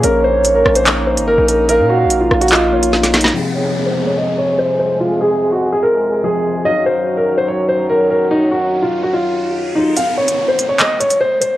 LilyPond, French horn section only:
\new Staff \with { instrumentName = "French horn section" } { \clef bass \time 4/4 \key f \phrygian \tempo 4 = 145 <bes des' ees'>1~ | <bes des' ees'>1 | <f, c aes>1~ | <f, c aes>1 |
<ges, ees ges>1~ | <ges, ees ges>1 | r1 | }